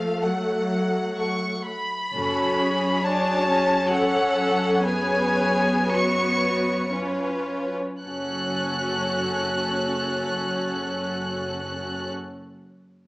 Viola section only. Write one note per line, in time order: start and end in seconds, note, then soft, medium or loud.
0.00 1.67 A3 soft
2.13 2.99 C#4 soft
2.13 2.99 F#4 soft
3.03 3.48 D4 soft
3.03 3.90 F#4 soft
3.48 3.91 C#4 soft
3.92 4.83 C#4 soft
3.92 4.36 A4 soft
4.37 4.84 A4 soft
4.84 6.91 B3 soft
4.84 5.86 G#4 soft
5.88 6.92 F#4 soft
6.91 7.75 C#4 soft
6.91 7.75 F4 soft
8.04 12.10 C#4 soft
8.04 12.10 F#4 soft